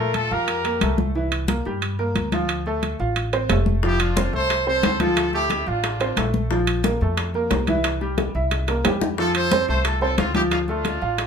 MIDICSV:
0, 0, Header, 1, 5, 480
1, 0, Start_track
1, 0, Key_signature, -1, "major"
1, 0, Tempo, 334635
1, 1651, Time_signature, 4, 2, 24, 8
1, 16164, End_track
2, 0, Start_track
2, 0, Title_t, "Grand piano"
2, 0, Program_c, 0, 0
2, 0, Note_on_c, 0, 57, 78
2, 0, Note_on_c, 0, 69, 66
2, 363, Note_off_c, 0, 57, 0
2, 366, Note_off_c, 0, 69, 0
2, 450, Note_on_c, 0, 65, 57
2, 451, Note_on_c, 0, 77, 67
2, 844, Note_off_c, 0, 65, 0
2, 845, Note_off_c, 0, 77, 0
2, 925, Note_on_c, 0, 58, 69
2, 930, Note_on_c, 0, 70, 69
2, 1124, Note_off_c, 0, 58, 0
2, 1127, Note_off_c, 0, 70, 0
2, 1169, Note_on_c, 0, 57, 65
2, 1174, Note_on_c, 0, 69, 65
2, 1564, Note_off_c, 0, 57, 0
2, 1567, Note_off_c, 0, 69, 0
2, 1654, Note_on_c, 0, 52, 69
2, 1658, Note_on_c, 0, 64, 78
2, 2047, Note_off_c, 0, 52, 0
2, 2050, Note_off_c, 0, 64, 0
2, 2133, Note_on_c, 0, 58, 70
2, 2137, Note_on_c, 0, 70, 69
2, 2330, Note_off_c, 0, 58, 0
2, 2332, Note_off_c, 0, 70, 0
2, 2381, Note_on_c, 0, 55, 62
2, 2385, Note_on_c, 0, 67, 71
2, 2771, Note_off_c, 0, 55, 0
2, 2774, Note_off_c, 0, 67, 0
2, 2855, Note_on_c, 0, 58, 69
2, 2855, Note_on_c, 0, 70, 77
2, 3248, Note_off_c, 0, 58, 0
2, 3249, Note_off_c, 0, 70, 0
2, 3343, Note_on_c, 0, 53, 81
2, 3344, Note_on_c, 0, 65, 89
2, 3734, Note_off_c, 0, 53, 0
2, 3734, Note_off_c, 0, 65, 0
2, 3824, Note_on_c, 0, 57, 76
2, 3827, Note_on_c, 0, 69, 74
2, 4214, Note_off_c, 0, 57, 0
2, 4216, Note_off_c, 0, 69, 0
2, 4301, Note_on_c, 0, 65, 68
2, 4307, Note_on_c, 0, 77, 63
2, 4693, Note_off_c, 0, 65, 0
2, 4696, Note_off_c, 0, 77, 0
2, 4780, Note_on_c, 0, 60, 68
2, 4782, Note_on_c, 0, 72, 70
2, 4975, Note_off_c, 0, 60, 0
2, 4976, Note_off_c, 0, 72, 0
2, 5022, Note_on_c, 0, 57, 64
2, 5024, Note_on_c, 0, 69, 68
2, 5414, Note_off_c, 0, 57, 0
2, 5415, Note_off_c, 0, 69, 0
2, 5502, Note_on_c, 0, 53, 79
2, 5506, Note_on_c, 0, 65, 69
2, 5894, Note_off_c, 0, 53, 0
2, 5896, Note_off_c, 0, 65, 0
2, 5973, Note_on_c, 0, 60, 67
2, 5977, Note_on_c, 0, 72, 66
2, 6172, Note_off_c, 0, 60, 0
2, 6174, Note_off_c, 0, 72, 0
2, 6209, Note_on_c, 0, 57, 57
2, 6212, Note_on_c, 0, 69, 55
2, 6607, Note_off_c, 0, 57, 0
2, 6608, Note_off_c, 0, 69, 0
2, 6697, Note_on_c, 0, 60, 64
2, 6699, Note_on_c, 0, 72, 69
2, 7091, Note_off_c, 0, 60, 0
2, 7093, Note_off_c, 0, 72, 0
2, 7178, Note_on_c, 0, 53, 84
2, 7186, Note_on_c, 0, 65, 82
2, 7572, Note_off_c, 0, 53, 0
2, 7576, Note_off_c, 0, 65, 0
2, 7664, Note_on_c, 0, 57, 74
2, 7666, Note_on_c, 0, 69, 73
2, 8056, Note_off_c, 0, 57, 0
2, 8057, Note_off_c, 0, 69, 0
2, 8137, Note_on_c, 0, 65, 67
2, 8145, Note_on_c, 0, 77, 62
2, 8531, Note_off_c, 0, 65, 0
2, 8536, Note_off_c, 0, 77, 0
2, 8621, Note_on_c, 0, 72, 64
2, 8622, Note_on_c, 0, 60, 65
2, 8817, Note_off_c, 0, 72, 0
2, 8818, Note_off_c, 0, 60, 0
2, 8859, Note_on_c, 0, 57, 67
2, 8866, Note_on_c, 0, 69, 65
2, 9253, Note_off_c, 0, 57, 0
2, 9257, Note_off_c, 0, 69, 0
2, 9339, Note_on_c, 0, 53, 80
2, 9343, Note_on_c, 0, 65, 75
2, 9733, Note_off_c, 0, 53, 0
2, 9735, Note_off_c, 0, 65, 0
2, 9830, Note_on_c, 0, 58, 74
2, 9833, Note_on_c, 0, 70, 67
2, 10022, Note_off_c, 0, 58, 0
2, 10024, Note_off_c, 0, 70, 0
2, 10070, Note_on_c, 0, 57, 61
2, 10072, Note_on_c, 0, 69, 62
2, 10459, Note_off_c, 0, 57, 0
2, 10460, Note_off_c, 0, 69, 0
2, 10541, Note_on_c, 0, 58, 71
2, 10543, Note_on_c, 0, 70, 71
2, 10933, Note_off_c, 0, 58, 0
2, 10935, Note_off_c, 0, 70, 0
2, 11021, Note_on_c, 0, 52, 92
2, 11022, Note_on_c, 0, 64, 87
2, 11413, Note_off_c, 0, 52, 0
2, 11414, Note_off_c, 0, 64, 0
2, 11490, Note_on_c, 0, 55, 70
2, 11498, Note_on_c, 0, 67, 68
2, 11886, Note_off_c, 0, 55, 0
2, 11891, Note_off_c, 0, 67, 0
2, 11980, Note_on_c, 0, 64, 61
2, 11984, Note_on_c, 0, 76, 60
2, 12372, Note_off_c, 0, 64, 0
2, 12374, Note_off_c, 0, 76, 0
2, 12457, Note_on_c, 0, 58, 74
2, 12461, Note_on_c, 0, 70, 71
2, 12653, Note_off_c, 0, 58, 0
2, 12656, Note_off_c, 0, 70, 0
2, 12697, Note_on_c, 0, 55, 58
2, 12704, Note_on_c, 0, 67, 65
2, 13089, Note_off_c, 0, 55, 0
2, 13093, Note_off_c, 0, 67, 0
2, 13179, Note_on_c, 0, 53, 77
2, 13183, Note_on_c, 0, 65, 82
2, 13570, Note_off_c, 0, 53, 0
2, 13573, Note_off_c, 0, 65, 0
2, 13659, Note_on_c, 0, 60, 67
2, 13664, Note_on_c, 0, 72, 71
2, 13854, Note_off_c, 0, 60, 0
2, 13857, Note_off_c, 0, 72, 0
2, 13894, Note_on_c, 0, 57, 68
2, 13895, Note_on_c, 0, 69, 62
2, 14286, Note_off_c, 0, 57, 0
2, 14287, Note_off_c, 0, 69, 0
2, 14368, Note_on_c, 0, 60, 68
2, 14373, Note_on_c, 0, 72, 73
2, 14762, Note_off_c, 0, 60, 0
2, 14765, Note_off_c, 0, 72, 0
2, 14848, Note_on_c, 0, 53, 84
2, 14852, Note_on_c, 0, 65, 78
2, 15242, Note_off_c, 0, 53, 0
2, 15244, Note_off_c, 0, 65, 0
2, 15330, Note_on_c, 0, 57, 70
2, 15336, Note_on_c, 0, 69, 73
2, 15723, Note_off_c, 0, 57, 0
2, 15726, Note_off_c, 0, 69, 0
2, 15807, Note_on_c, 0, 65, 64
2, 15811, Note_on_c, 0, 77, 65
2, 16164, Note_off_c, 0, 65, 0
2, 16164, Note_off_c, 0, 77, 0
2, 16164, End_track
3, 0, Start_track
3, 0, Title_t, "Trumpet section"
3, 0, Program_c, 1, 61
3, 0, Note_on_c, 1, 65, 71
3, 0, Note_on_c, 1, 70, 89
3, 209, Note_off_c, 1, 65, 0
3, 212, Note_off_c, 1, 70, 0
3, 216, Note_on_c, 1, 69, 92
3, 226, Note_on_c, 1, 65, 75
3, 453, Note_off_c, 1, 69, 0
3, 457, Note_on_c, 1, 70, 87
3, 458, Note_off_c, 1, 65, 0
3, 463, Note_on_c, 1, 67, 74
3, 1415, Note_off_c, 1, 70, 0
3, 1418, Note_off_c, 1, 67, 0
3, 5515, Note_on_c, 1, 64, 76
3, 5525, Note_on_c, 1, 67, 92
3, 5730, Note_off_c, 1, 64, 0
3, 5736, Note_off_c, 1, 67, 0
3, 5758, Note_on_c, 1, 62, 67
3, 5762, Note_on_c, 1, 65, 92
3, 6228, Note_off_c, 1, 62, 0
3, 6230, Note_off_c, 1, 65, 0
3, 6235, Note_on_c, 1, 69, 75
3, 6237, Note_on_c, 1, 72, 105
3, 6674, Note_off_c, 1, 69, 0
3, 6675, Note_off_c, 1, 72, 0
3, 6711, Note_on_c, 1, 72, 101
3, 6716, Note_on_c, 1, 69, 81
3, 7152, Note_off_c, 1, 72, 0
3, 7154, Note_off_c, 1, 69, 0
3, 7179, Note_on_c, 1, 69, 102
3, 7186, Note_on_c, 1, 65, 70
3, 7659, Note_off_c, 1, 69, 0
3, 7660, Note_on_c, 1, 67, 93
3, 7662, Note_off_c, 1, 65, 0
3, 7666, Note_on_c, 1, 64, 67
3, 8106, Note_off_c, 1, 67, 0
3, 8109, Note_off_c, 1, 64, 0
3, 8134, Note_on_c, 1, 65, 76
3, 8148, Note_on_c, 1, 62, 60
3, 8357, Note_off_c, 1, 65, 0
3, 8369, Note_off_c, 1, 62, 0
3, 8374, Note_on_c, 1, 65, 64
3, 8386, Note_on_c, 1, 62, 50
3, 9046, Note_off_c, 1, 65, 0
3, 9052, Note_off_c, 1, 62, 0
3, 13175, Note_on_c, 1, 69, 102
3, 13187, Note_on_c, 1, 65, 77
3, 13398, Note_off_c, 1, 69, 0
3, 13404, Note_off_c, 1, 65, 0
3, 13411, Note_on_c, 1, 72, 105
3, 13423, Note_on_c, 1, 69, 75
3, 13858, Note_off_c, 1, 72, 0
3, 13865, Note_off_c, 1, 69, 0
3, 13889, Note_on_c, 1, 72, 95
3, 13904, Note_on_c, 1, 69, 65
3, 14113, Note_off_c, 1, 69, 0
3, 14114, Note_off_c, 1, 72, 0
3, 14130, Note_on_c, 1, 69, 82
3, 14146, Note_on_c, 1, 65, 57
3, 14349, Note_off_c, 1, 69, 0
3, 14363, Note_off_c, 1, 65, 0
3, 14367, Note_on_c, 1, 69, 91
3, 14388, Note_on_c, 1, 65, 74
3, 14586, Note_off_c, 1, 65, 0
3, 14592, Note_off_c, 1, 69, 0
3, 14604, Note_on_c, 1, 65, 83
3, 14632, Note_on_c, 1, 60, 72
3, 14830, Note_off_c, 1, 65, 0
3, 14836, Note_on_c, 1, 67, 89
3, 14845, Note_off_c, 1, 60, 0
3, 14860, Note_on_c, 1, 64, 68
3, 14947, Note_off_c, 1, 67, 0
3, 14966, Note_off_c, 1, 64, 0
3, 15074, Note_on_c, 1, 65, 85
3, 15101, Note_on_c, 1, 62, 62
3, 15186, Note_off_c, 1, 65, 0
3, 15206, Note_off_c, 1, 62, 0
3, 15320, Note_on_c, 1, 65, 81
3, 15340, Note_on_c, 1, 62, 61
3, 16164, Note_off_c, 1, 62, 0
3, 16164, Note_off_c, 1, 65, 0
3, 16164, End_track
4, 0, Start_track
4, 0, Title_t, "Upright bass"
4, 0, Program_c, 2, 32
4, 0, Note_on_c, 2, 46, 95
4, 369, Note_off_c, 2, 46, 0
4, 450, Note_on_c, 2, 41, 89
4, 1120, Note_off_c, 2, 41, 0
4, 1170, Note_on_c, 2, 36, 104
4, 2291, Note_off_c, 2, 36, 0
4, 2373, Note_on_c, 2, 43, 87
4, 3043, Note_off_c, 2, 43, 0
4, 3091, Note_on_c, 2, 38, 100
4, 4213, Note_off_c, 2, 38, 0
4, 4297, Note_on_c, 2, 33, 93
4, 4967, Note_off_c, 2, 33, 0
4, 5013, Note_on_c, 2, 29, 96
4, 6134, Note_off_c, 2, 29, 0
4, 6213, Note_on_c, 2, 36, 89
4, 6885, Note_off_c, 2, 36, 0
4, 6935, Note_on_c, 2, 38, 86
4, 8056, Note_off_c, 2, 38, 0
4, 8140, Note_on_c, 2, 33, 89
4, 8809, Note_off_c, 2, 33, 0
4, 8855, Note_on_c, 2, 34, 97
4, 9976, Note_off_c, 2, 34, 0
4, 10057, Note_on_c, 2, 41, 90
4, 10727, Note_off_c, 2, 41, 0
4, 10775, Note_on_c, 2, 36, 89
4, 11894, Note_off_c, 2, 36, 0
4, 11976, Note_on_c, 2, 36, 91
4, 12645, Note_off_c, 2, 36, 0
4, 12697, Note_on_c, 2, 41, 90
4, 13813, Note_off_c, 2, 41, 0
4, 13890, Note_on_c, 2, 36, 93
4, 14560, Note_off_c, 2, 36, 0
4, 14608, Note_on_c, 2, 38, 90
4, 15725, Note_off_c, 2, 38, 0
4, 15805, Note_on_c, 2, 33, 88
4, 16164, Note_off_c, 2, 33, 0
4, 16164, End_track
5, 0, Start_track
5, 0, Title_t, "Drums"
5, 203, Note_on_c, 9, 65, 62
5, 204, Note_on_c, 9, 63, 55
5, 347, Note_off_c, 9, 65, 0
5, 348, Note_off_c, 9, 63, 0
5, 447, Note_on_c, 9, 63, 34
5, 590, Note_off_c, 9, 63, 0
5, 683, Note_on_c, 9, 63, 36
5, 686, Note_on_c, 9, 65, 87
5, 827, Note_off_c, 9, 63, 0
5, 829, Note_off_c, 9, 65, 0
5, 927, Note_on_c, 9, 63, 41
5, 930, Note_on_c, 9, 65, 67
5, 1070, Note_off_c, 9, 63, 0
5, 1073, Note_off_c, 9, 65, 0
5, 1165, Note_on_c, 9, 63, 81
5, 1167, Note_on_c, 9, 65, 92
5, 1308, Note_off_c, 9, 63, 0
5, 1311, Note_off_c, 9, 65, 0
5, 1407, Note_on_c, 9, 63, 91
5, 1551, Note_off_c, 9, 63, 0
5, 1653, Note_on_c, 9, 63, 31
5, 1796, Note_off_c, 9, 63, 0
5, 1890, Note_on_c, 9, 63, 30
5, 1891, Note_on_c, 9, 65, 92
5, 2033, Note_off_c, 9, 63, 0
5, 2034, Note_off_c, 9, 65, 0
5, 2127, Note_on_c, 9, 63, 93
5, 2135, Note_on_c, 9, 65, 64
5, 2270, Note_off_c, 9, 63, 0
5, 2279, Note_off_c, 9, 65, 0
5, 2371, Note_on_c, 9, 63, 35
5, 2515, Note_off_c, 9, 63, 0
5, 2612, Note_on_c, 9, 63, 39
5, 2612, Note_on_c, 9, 65, 88
5, 2756, Note_off_c, 9, 63, 0
5, 2756, Note_off_c, 9, 65, 0
5, 2854, Note_on_c, 9, 63, 38
5, 2997, Note_off_c, 9, 63, 0
5, 3092, Note_on_c, 9, 63, 69
5, 3093, Note_on_c, 9, 65, 80
5, 3235, Note_off_c, 9, 63, 0
5, 3236, Note_off_c, 9, 65, 0
5, 3329, Note_on_c, 9, 63, 83
5, 3334, Note_on_c, 9, 65, 66
5, 3472, Note_off_c, 9, 63, 0
5, 3477, Note_off_c, 9, 65, 0
5, 3571, Note_on_c, 9, 65, 94
5, 3573, Note_on_c, 9, 63, 30
5, 3714, Note_off_c, 9, 65, 0
5, 3716, Note_off_c, 9, 63, 0
5, 3815, Note_on_c, 9, 63, 34
5, 3959, Note_off_c, 9, 63, 0
5, 4056, Note_on_c, 9, 65, 66
5, 4057, Note_on_c, 9, 63, 65
5, 4200, Note_off_c, 9, 63, 0
5, 4200, Note_off_c, 9, 65, 0
5, 4297, Note_on_c, 9, 63, 34
5, 4440, Note_off_c, 9, 63, 0
5, 4533, Note_on_c, 9, 65, 91
5, 4539, Note_on_c, 9, 63, 39
5, 4677, Note_off_c, 9, 65, 0
5, 4682, Note_off_c, 9, 63, 0
5, 4776, Note_on_c, 9, 65, 67
5, 4781, Note_on_c, 9, 63, 35
5, 4920, Note_off_c, 9, 65, 0
5, 4924, Note_off_c, 9, 63, 0
5, 5014, Note_on_c, 9, 65, 97
5, 5014, Note_on_c, 9, 66, 77
5, 5015, Note_on_c, 9, 63, 76
5, 5157, Note_off_c, 9, 65, 0
5, 5157, Note_off_c, 9, 66, 0
5, 5159, Note_off_c, 9, 63, 0
5, 5251, Note_on_c, 9, 63, 84
5, 5394, Note_off_c, 9, 63, 0
5, 5494, Note_on_c, 9, 60, 64
5, 5496, Note_on_c, 9, 63, 28
5, 5638, Note_off_c, 9, 60, 0
5, 5640, Note_off_c, 9, 63, 0
5, 5734, Note_on_c, 9, 65, 100
5, 5738, Note_on_c, 9, 63, 32
5, 5878, Note_off_c, 9, 65, 0
5, 5882, Note_off_c, 9, 63, 0
5, 5977, Note_on_c, 9, 63, 103
5, 5977, Note_on_c, 9, 65, 68
5, 5978, Note_on_c, 9, 60, 56
5, 6120, Note_off_c, 9, 63, 0
5, 6120, Note_off_c, 9, 65, 0
5, 6121, Note_off_c, 9, 60, 0
5, 6217, Note_on_c, 9, 63, 34
5, 6360, Note_off_c, 9, 63, 0
5, 6456, Note_on_c, 9, 63, 35
5, 6457, Note_on_c, 9, 65, 85
5, 6460, Note_on_c, 9, 60, 60
5, 6599, Note_off_c, 9, 63, 0
5, 6601, Note_off_c, 9, 65, 0
5, 6604, Note_off_c, 9, 60, 0
5, 6692, Note_on_c, 9, 63, 35
5, 6836, Note_off_c, 9, 63, 0
5, 6931, Note_on_c, 9, 63, 75
5, 6934, Note_on_c, 9, 60, 58
5, 6934, Note_on_c, 9, 61, 83
5, 6937, Note_on_c, 9, 65, 80
5, 7075, Note_off_c, 9, 63, 0
5, 7077, Note_off_c, 9, 60, 0
5, 7077, Note_off_c, 9, 61, 0
5, 7081, Note_off_c, 9, 65, 0
5, 7170, Note_on_c, 9, 63, 83
5, 7172, Note_on_c, 9, 65, 68
5, 7314, Note_off_c, 9, 63, 0
5, 7316, Note_off_c, 9, 65, 0
5, 7410, Note_on_c, 9, 63, 31
5, 7413, Note_on_c, 9, 65, 101
5, 7414, Note_on_c, 9, 60, 60
5, 7553, Note_off_c, 9, 63, 0
5, 7557, Note_off_c, 9, 65, 0
5, 7558, Note_off_c, 9, 60, 0
5, 7648, Note_on_c, 9, 63, 34
5, 7653, Note_on_c, 9, 60, 39
5, 7791, Note_off_c, 9, 63, 0
5, 7797, Note_off_c, 9, 60, 0
5, 7887, Note_on_c, 9, 63, 65
5, 7894, Note_on_c, 9, 60, 59
5, 7895, Note_on_c, 9, 65, 67
5, 8030, Note_off_c, 9, 63, 0
5, 8038, Note_off_c, 9, 60, 0
5, 8039, Note_off_c, 9, 65, 0
5, 8126, Note_on_c, 9, 63, 37
5, 8269, Note_off_c, 9, 63, 0
5, 8369, Note_on_c, 9, 63, 33
5, 8372, Note_on_c, 9, 65, 87
5, 8374, Note_on_c, 9, 60, 67
5, 8512, Note_off_c, 9, 63, 0
5, 8515, Note_off_c, 9, 65, 0
5, 8517, Note_off_c, 9, 60, 0
5, 8608, Note_on_c, 9, 63, 38
5, 8612, Note_on_c, 9, 60, 32
5, 8616, Note_on_c, 9, 65, 67
5, 8751, Note_off_c, 9, 63, 0
5, 8756, Note_off_c, 9, 60, 0
5, 8759, Note_off_c, 9, 65, 0
5, 8846, Note_on_c, 9, 63, 72
5, 8852, Note_on_c, 9, 65, 100
5, 8854, Note_on_c, 9, 60, 65
5, 8854, Note_on_c, 9, 61, 71
5, 8990, Note_off_c, 9, 63, 0
5, 8995, Note_off_c, 9, 65, 0
5, 8998, Note_off_c, 9, 60, 0
5, 8998, Note_off_c, 9, 61, 0
5, 9091, Note_on_c, 9, 63, 81
5, 9096, Note_on_c, 9, 60, 33
5, 9235, Note_off_c, 9, 63, 0
5, 9240, Note_off_c, 9, 60, 0
5, 9332, Note_on_c, 9, 60, 64
5, 9332, Note_on_c, 9, 63, 30
5, 9476, Note_off_c, 9, 60, 0
5, 9476, Note_off_c, 9, 63, 0
5, 9572, Note_on_c, 9, 63, 34
5, 9572, Note_on_c, 9, 65, 98
5, 9716, Note_off_c, 9, 63, 0
5, 9716, Note_off_c, 9, 65, 0
5, 9810, Note_on_c, 9, 65, 70
5, 9813, Note_on_c, 9, 63, 89
5, 9816, Note_on_c, 9, 60, 58
5, 9954, Note_off_c, 9, 65, 0
5, 9956, Note_off_c, 9, 63, 0
5, 9959, Note_off_c, 9, 60, 0
5, 10052, Note_on_c, 9, 63, 36
5, 10196, Note_off_c, 9, 63, 0
5, 10289, Note_on_c, 9, 63, 36
5, 10291, Note_on_c, 9, 65, 88
5, 10293, Note_on_c, 9, 60, 67
5, 10432, Note_off_c, 9, 63, 0
5, 10434, Note_off_c, 9, 65, 0
5, 10437, Note_off_c, 9, 60, 0
5, 10534, Note_on_c, 9, 63, 37
5, 10677, Note_off_c, 9, 63, 0
5, 10767, Note_on_c, 9, 65, 72
5, 10767, Note_on_c, 9, 66, 66
5, 10771, Note_on_c, 9, 60, 63
5, 10771, Note_on_c, 9, 61, 78
5, 10774, Note_on_c, 9, 63, 78
5, 10911, Note_off_c, 9, 65, 0
5, 10911, Note_off_c, 9, 66, 0
5, 10915, Note_off_c, 9, 60, 0
5, 10915, Note_off_c, 9, 61, 0
5, 10918, Note_off_c, 9, 63, 0
5, 11006, Note_on_c, 9, 65, 66
5, 11014, Note_on_c, 9, 63, 84
5, 11150, Note_off_c, 9, 65, 0
5, 11158, Note_off_c, 9, 63, 0
5, 11247, Note_on_c, 9, 65, 100
5, 11255, Note_on_c, 9, 60, 58
5, 11256, Note_on_c, 9, 63, 32
5, 11391, Note_off_c, 9, 65, 0
5, 11399, Note_off_c, 9, 60, 0
5, 11400, Note_off_c, 9, 63, 0
5, 11494, Note_on_c, 9, 60, 36
5, 11494, Note_on_c, 9, 63, 32
5, 11637, Note_off_c, 9, 60, 0
5, 11638, Note_off_c, 9, 63, 0
5, 11729, Note_on_c, 9, 63, 64
5, 11730, Note_on_c, 9, 65, 64
5, 11733, Note_on_c, 9, 60, 63
5, 11872, Note_off_c, 9, 63, 0
5, 11873, Note_off_c, 9, 65, 0
5, 11876, Note_off_c, 9, 60, 0
5, 11972, Note_on_c, 9, 63, 35
5, 12116, Note_off_c, 9, 63, 0
5, 12210, Note_on_c, 9, 63, 38
5, 12211, Note_on_c, 9, 65, 87
5, 12216, Note_on_c, 9, 60, 66
5, 12353, Note_off_c, 9, 63, 0
5, 12355, Note_off_c, 9, 65, 0
5, 12359, Note_off_c, 9, 60, 0
5, 12450, Note_on_c, 9, 65, 67
5, 12452, Note_on_c, 9, 63, 38
5, 12453, Note_on_c, 9, 60, 84
5, 12593, Note_off_c, 9, 65, 0
5, 12595, Note_off_c, 9, 63, 0
5, 12596, Note_off_c, 9, 60, 0
5, 12690, Note_on_c, 9, 65, 97
5, 12690, Note_on_c, 9, 66, 75
5, 12692, Note_on_c, 9, 63, 74
5, 12693, Note_on_c, 9, 61, 82
5, 12834, Note_off_c, 9, 65, 0
5, 12834, Note_off_c, 9, 66, 0
5, 12836, Note_off_c, 9, 63, 0
5, 12837, Note_off_c, 9, 61, 0
5, 12930, Note_on_c, 9, 63, 80
5, 12931, Note_on_c, 9, 61, 97
5, 13074, Note_off_c, 9, 61, 0
5, 13074, Note_off_c, 9, 63, 0
5, 13167, Note_on_c, 9, 63, 35
5, 13172, Note_on_c, 9, 60, 69
5, 13311, Note_off_c, 9, 63, 0
5, 13315, Note_off_c, 9, 60, 0
5, 13408, Note_on_c, 9, 65, 101
5, 13409, Note_on_c, 9, 63, 35
5, 13551, Note_off_c, 9, 65, 0
5, 13553, Note_off_c, 9, 63, 0
5, 13648, Note_on_c, 9, 65, 65
5, 13649, Note_on_c, 9, 60, 53
5, 13649, Note_on_c, 9, 63, 95
5, 13792, Note_off_c, 9, 63, 0
5, 13792, Note_off_c, 9, 65, 0
5, 13793, Note_off_c, 9, 60, 0
5, 13887, Note_on_c, 9, 63, 32
5, 14031, Note_off_c, 9, 63, 0
5, 14125, Note_on_c, 9, 65, 90
5, 14129, Note_on_c, 9, 60, 67
5, 14129, Note_on_c, 9, 63, 33
5, 14269, Note_off_c, 9, 65, 0
5, 14272, Note_off_c, 9, 60, 0
5, 14272, Note_off_c, 9, 63, 0
5, 14361, Note_on_c, 9, 63, 37
5, 14504, Note_off_c, 9, 63, 0
5, 14601, Note_on_c, 9, 65, 68
5, 14602, Note_on_c, 9, 63, 86
5, 14605, Note_on_c, 9, 60, 67
5, 14605, Note_on_c, 9, 61, 74
5, 14745, Note_off_c, 9, 63, 0
5, 14745, Note_off_c, 9, 65, 0
5, 14748, Note_off_c, 9, 60, 0
5, 14748, Note_off_c, 9, 61, 0
5, 14840, Note_on_c, 9, 63, 82
5, 14841, Note_on_c, 9, 65, 63
5, 14983, Note_off_c, 9, 63, 0
5, 14984, Note_off_c, 9, 65, 0
5, 15081, Note_on_c, 9, 63, 28
5, 15082, Note_on_c, 9, 65, 94
5, 15086, Note_on_c, 9, 60, 61
5, 15224, Note_off_c, 9, 63, 0
5, 15226, Note_off_c, 9, 65, 0
5, 15230, Note_off_c, 9, 60, 0
5, 15319, Note_on_c, 9, 63, 34
5, 15328, Note_on_c, 9, 60, 32
5, 15462, Note_off_c, 9, 63, 0
5, 15472, Note_off_c, 9, 60, 0
5, 15559, Note_on_c, 9, 65, 66
5, 15560, Note_on_c, 9, 63, 63
5, 15570, Note_on_c, 9, 60, 53
5, 15703, Note_off_c, 9, 65, 0
5, 15704, Note_off_c, 9, 63, 0
5, 15714, Note_off_c, 9, 60, 0
5, 15801, Note_on_c, 9, 63, 36
5, 15944, Note_off_c, 9, 63, 0
5, 16038, Note_on_c, 9, 63, 38
5, 16042, Note_on_c, 9, 65, 82
5, 16045, Note_on_c, 9, 60, 57
5, 16164, Note_off_c, 9, 60, 0
5, 16164, Note_off_c, 9, 63, 0
5, 16164, Note_off_c, 9, 65, 0
5, 16164, End_track
0, 0, End_of_file